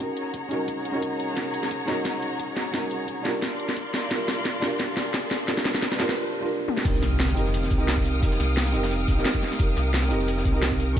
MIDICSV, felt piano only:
0, 0, Header, 1, 2, 480
1, 0, Start_track
1, 0, Time_signature, 4, 2, 24, 8
1, 0, Key_signature, -4, "minor"
1, 0, Tempo, 342857
1, 15396, End_track
2, 0, Start_track
2, 0, Title_t, "Felt piano"
2, 0, Program_c, 0, 0
2, 0, Control_c, 0, 64, 127
2, 0, Note_on_c, 0, 61, 72
2, 0, Note_on_c, 0, 63, 68
2, 5, Note_on_c, 0, 66, 67
2, 10, Control_c, 0, 64, 0
2, 25, Note_on_c, 0, 70, 81
2, 256, Control_c, 0, 64, 127
2, 662, Note_off_c, 0, 61, 0
2, 682, Note_off_c, 0, 63, 0
2, 683, Note_on_c, 0, 61, 89
2, 693, Note_off_c, 0, 66, 0
2, 703, Note_off_c, 0, 70, 0
2, 704, Note_on_c, 0, 63, 83
2, 725, Note_on_c, 0, 66, 82
2, 746, Note_on_c, 0, 70, 99
2, 1268, Note_off_c, 0, 61, 0
2, 1288, Note_off_c, 0, 63, 0
2, 1289, Note_on_c, 0, 61, 91
2, 1303, Note_off_c, 0, 66, 0
2, 1309, Note_on_c, 0, 63, 82
2, 1313, Note_off_c, 0, 70, 0
2, 1331, Note_on_c, 0, 66, 81
2, 1352, Note_on_c, 0, 70, 97
2, 1858, Note_off_c, 0, 61, 0
2, 1879, Note_on_c, 0, 61, 75
2, 1880, Note_off_c, 0, 63, 0
2, 1892, Note_off_c, 0, 66, 0
2, 1901, Note_on_c, 0, 63, 66
2, 1902, Note_off_c, 0, 70, 0
2, 1922, Note_on_c, 0, 66, 68
2, 1942, Note_on_c, 0, 70, 83
2, 2580, Note_off_c, 0, 61, 0
2, 2601, Note_off_c, 0, 63, 0
2, 2601, Note_on_c, 0, 61, 89
2, 2612, Note_off_c, 0, 66, 0
2, 2622, Note_off_c, 0, 70, 0
2, 2622, Note_on_c, 0, 63, 87
2, 2644, Note_on_c, 0, 66, 85
2, 2665, Note_on_c, 0, 70, 103
2, 3782, Note_off_c, 0, 61, 0
2, 3801, Note_off_c, 0, 63, 0
2, 3803, Note_on_c, 0, 61, 74
2, 3812, Note_off_c, 0, 66, 0
2, 3822, Note_on_c, 0, 63, 71
2, 3823, Note_off_c, 0, 70, 0
2, 3844, Note_on_c, 0, 66, 68
2, 3865, Note_on_c, 0, 70, 82
2, 4512, Note_off_c, 0, 61, 0
2, 4520, Note_on_c, 0, 62, 94
2, 4522, Note_off_c, 0, 63, 0
2, 4533, Note_off_c, 0, 66, 0
2, 4540, Note_on_c, 0, 65, 87
2, 4543, Note_off_c, 0, 70, 0
2, 4561, Note_on_c, 0, 67, 82
2, 4582, Note_on_c, 0, 70, 99
2, 4809, Control_c, 0, 64, 0
2, 5096, Control_c, 0, 64, 127
2, 5701, Note_off_c, 0, 62, 0
2, 5721, Note_off_c, 0, 65, 0
2, 5722, Note_on_c, 0, 62, 75
2, 5731, Note_off_c, 0, 67, 0
2, 5742, Note_off_c, 0, 70, 0
2, 5744, Note_on_c, 0, 65, 72
2, 5765, Note_on_c, 0, 67, 71
2, 5786, Note_on_c, 0, 70, 82
2, 6421, Note_off_c, 0, 62, 0
2, 6441, Note_off_c, 0, 65, 0
2, 6442, Note_on_c, 0, 62, 96
2, 6453, Note_off_c, 0, 67, 0
2, 6462, Note_on_c, 0, 65, 88
2, 6463, Note_off_c, 0, 70, 0
2, 6484, Note_on_c, 0, 67, 86
2, 6505, Note_on_c, 0, 70, 105
2, 7622, Note_off_c, 0, 62, 0
2, 7641, Note_off_c, 0, 65, 0
2, 7643, Note_on_c, 0, 62, 79
2, 7653, Note_off_c, 0, 67, 0
2, 7663, Note_off_c, 0, 70, 0
2, 7664, Note_on_c, 0, 65, 74
2, 7685, Note_on_c, 0, 67, 70
2, 7706, Note_on_c, 0, 70, 87
2, 8340, Note_off_c, 0, 62, 0
2, 8360, Note_off_c, 0, 65, 0
2, 8361, Note_on_c, 0, 62, 97
2, 8373, Note_off_c, 0, 67, 0
2, 8381, Note_on_c, 0, 65, 88
2, 8383, Note_off_c, 0, 70, 0
2, 8401, Note_on_c, 0, 67, 91
2, 8422, Note_on_c, 0, 70, 105
2, 8949, Note_off_c, 0, 62, 0
2, 8970, Note_off_c, 0, 65, 0
2, 8970, Note_on_c, 0, 62, 95
2, 8981, Note_off_c, 0, 67, 0
2, 8991, Note_on_c, 0, 65, 88
2, 8992, Note_off_c, 0, 70, 0
2, 9012, Note_on_c, 0, 67, 88
2, 9033, Note_on_c, 0, 70, 101
2, 9551, Note_off_c, 0, 62, 0
2, 9561, Note_off_c, 0, 65, 0
2, 9561, Note_on_c, 0, 60, 74
2, 9572, Note_off_c, 0, 67, 0
2, 9582, Note_off_c, 0, 70, 0
2, 9583, Note_on_c, 0, 63, 71
2, 9603, Note_on_c, 0, 67, 70
2, 9610, Control_c, 0, 64, 0
2, 9624, Note_on_c, 0, 70, 83
2, 9842, Control_c, 0, 64, 127
2, 10261, Note_off_c, 0, 60, 0
2, 10281, Note_off_c, 0, 63, 0
2, 10282, Note_on_c, 0, 60, 96
2, 10292, Note_off_c, 0, 67, 0
2, 10302, Note_on_c, 0, 63, 87
2, 10303, Note_off_c, 0, 70, 0
2, 10324, Note_on_c, 0, 67, 83
2, 10345, Note_on_c, 0, 70, 100
2, 10871, Note_off_c, 0, 60, 0
2, 10891, Note_off_c, 0, 63, 0
2, 10892, Note_on_c, 0, 60, 93
2, 10902, Note_off_c, 0, 67, 0
2, 10913, Note_off_c, 0, 70, 0
2, 10914, Note_on_c, 0, 63, 85
2, 10934, Note_on_c, 0, 67, 83
2, 10955, Note_on_c, 0, 70, 105
2, 11463, Note_off_c, 0, 60, 0
2, 11483, Note_off_c, 0, 63, 0
2, 11484, Note_on_c, 0, 60, 80
2, 11493, Note_off_c, 0, 67, 0
2, 11503, Note_off_c, 0, 70, 0
2, 11505, Note_on_c, 0, 63, 72
2, 11525, Note_on_c, 0, 67, 72
2, 11546, Note_on_c, 0, 70, 84
2, 12183, Note_off_c, 0, 60, 0
2, 12203, Note_off_c, 0, 63, 0
2, 12204, Note_on_c, 0, 60, 96
2, 12213, Note_off_c, 0, 67, 0
2, 12223, Note_off_c, 0, 70, 0
2, 12226, Note_on_c, 0, 63, 86
2, 12246, Note_on_c, 0, 67, 88
2, 12268, Note_on_c, 0, 70, 104
2, 12791, Note_off_c, 0, 60, 0
2, 12812, Note_on_c, 0, 60, 93
2, 12813, Note_off_c, 0, 63, 0
2, 12823, Note_off_c, 0, 67, 0
2, 12834, Note_off_c, 0, 70, 0
2, 12834, Note_on_c, 0, 63, 84
2, 12854, Note_on_c, 0, 67, 85
2, 12874, Note_on_c, 0, 70, 107
2, 13382, Note_off_c, 0, 60, 0
2, 13403, Note_off_c, 0, 63, 0
2, 13403, Note_on_c, 0, 60, 78
2, 13413, Note_off_c, 0, 67, 0
2, 13423, Note_off_c, 0, 70, 0
2, 13425, Note_on_c, 0, 63, 72
2, 13445, Note_on_c, 0, 67, 71
2, 13467, Note_on_c, 0, 70, 84
2, 14102, Note_off_c, 0, 60, 0
2, 14123, Note_off_c, 0, 63, 0
2, 14123, Note_on_c, 0, 60, 96
2, 14133, Note_off_c, 0, 67, 0
2, 14144, Note_off_c, 0, 70, 0
2, 14144, Note_on_c, 0, 63, 88
2, 14164, Note_on_c, 0, 67, 87
2, 14185, Note_on_c, 0, 70, 106
2, 14711, Note_off_c, 0, 60, 0
2, 14732, Note_off_c, 0, 63, 0
2, 14732, Note_on_c, 0, 60, 95
2, 14742, Note_off_c, 0, 67, 0
2, 14753, Note_off_c, 0, 70, 0
2, 14753, Note_on_c, 0, 63, 85
2, 14774, Note_on_c, 0, 67, 85
2, 14795, Note_on_c, 0, 70, 107
2, 15312, Note_off_c, 0, 60, 0
2, 15321, Note_off_c, 0, 63, 0
2, 15321, Note_on_c, 0, 61, 77
2, 15333, Note_off_c, 0, 67, 0
2, 15342, Note_on_c, 0, 63, 70
2, 15343, Note_off_c, 0, 70, 0
2, 15375, Control_c, 0, 64, 0
2, 15396, Note_off_c, 0, 61, 0
2, 15396, Note_off_c, 0, 63, 0
2, 15396, End_track
0, 0, End_of_file